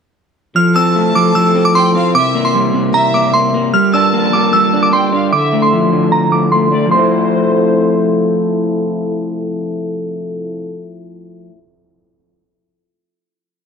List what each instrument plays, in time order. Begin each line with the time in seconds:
0.56 french horn section C3 F3 E4 A4, clean electric guitar F3, synth bell F6
0.76 clean electric guitar C4, violin section A5, synth bell E6
0.96 clean electric guitar A3
1.15 clean electric guitar F3, synth bell D6
1.35 clean electric guitar F3, synth bell E6
1.55 clean electric guitar C4
1.65 synth bell D6
1.75 clean electric guitar C4, violin section G5, synth bell C6
1.95 clean electric guitar C4, violin section F5
2.15 french horn section C3 G3 A#4, clean electric guitar C3, violin section E5, synth bell D6
2.35 clean electric guitar A#3
2.45 synth bell C6
2.54 clean electric guitar G3
2.74 clean electric guitar C3
2.94 clean electric guitar C3, violin section E5, synth bell A#5
3.14 clean electric guitar A#3, synth bell D6
3.34 clean electric guitar A#3, synth bell C6
3.54 clean electric guitar A#3
3.74 french horn section D3 F4, clean electric guitar G3, synth bell F6
3.94 clean electric guitar D4, violin section A5, synth bell E6
4.13 clean electric guitar A#3
4.33 clean electric guitar G3, synth bell D6
4.53 clean electric guitar G3, synth bell E6
4.73 clean electric guitar D4
4.83 synth bell D6
4.93 clean electric guitar D4, violin section G5, synth bell C6
5.13 clean electric guitar D4, violin section F5
5.33 french horn section D3 F3 E4 A4, clean electric guitar D3, violin section E5, synth bell D6
5.53 clean electric guitar A3
5.62 synth bell C6
5.73 clean electric guitar F3
5.92 clean electric guitar D3
6.12 clean electric guitar D3, synth bell A#5
6.32 clean electric guitar A3, synth bell D6
6.52 clean electric guitar A3, synth bell C6
6.72 clean electric guitar A3, violin section D5
6.86 clean electric guitar F3 A3
6.91 french horn section C3 F3 E4 A4, clean electric guitar C4, violin section C5, synth bell C6
6.98 clean electric guitar E4